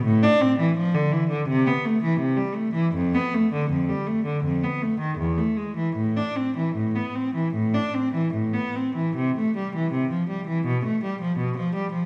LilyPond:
\new Staff \with { instrumentName = "Cello" } { \clef bass \time 4/4 \key a \minor \tempo 4 = 81 a,16 d'16 c'16 e16 f16 d16 e16 d16 c16 b16 a16 e16 c16 g16 a16 e16 | f,16 b16 a16 d16 f,16 g16 a16 d16 f,16 b16 a16 ees16 e,16 a16 gis16 e16 | a,16 d'16 c'16 e16 a,16 b16 c'16 e16 a,16 d'16 c'16 e16 a,16 b16 c'16 e16 | \key c \major c16 a16 g16 e16 c16 f16 g16 e16 b,16 a16 g16 f16 b,16 f16 g16 f16 | }